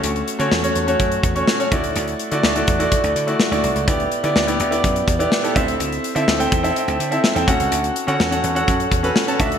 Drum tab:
HH |xxxx-xxxxxxx-xxx|xxxx-xxxxxxx-xxx|xxxx-xxxxxxx-xxx|xxxx-xxxxxxx-xxx|
SD |----o-------o---|----o-------o---|----o-------o---|----o-------o---|
BD |--------o-o---o-|------o-o-------|o-------o-o---o-|------o-------o-|

HH |xxxx-xxxxxxx-xxx|
SD |----o-------o---|
BD |--------o-o---o-|